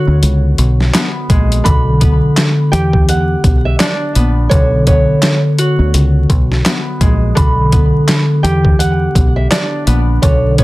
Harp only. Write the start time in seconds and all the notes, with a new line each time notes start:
Already playing: D3 B3 D4 F#4
0.94 B3
1.30 G#3
1.64 D3
2.00 B3
2.72 G4
3.80 D4
4.15 B3
4.51 D3
4.87 B3
5.58 F#4
6.65 B3
7.01 G#3
7.35 D3
7.72 B3
8.43 G4
9.51 D4
9.87 B3
10.23 D3
10.59 B3